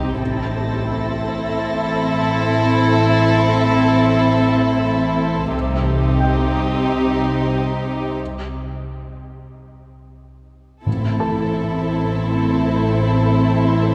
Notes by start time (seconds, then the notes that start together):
Already playing: C2 C3 C4 D#4 G4
0.19 A1 A2 C4 E4 A4 C5 E5 A6 A#6
5.53 C2 C3 C4 D#4 G4 C5 D#5
6.20 G5
10.86 A1 A2 E3 A3 C4 E4 A4 C5 E5
11.20 A4 A5